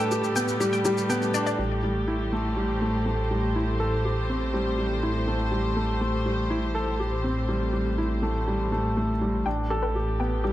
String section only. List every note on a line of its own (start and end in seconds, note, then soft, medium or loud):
0.00 9.45 A2 medium
0.00 9.46 A3 medium
0.00 9.46 G4 medium
0.00 1.59 B4 medium
2.10 9.46 C5 medium
9.46 10.53 A2 medium
9.53 10.53 A3 medium
9.74 10.53 G4 medium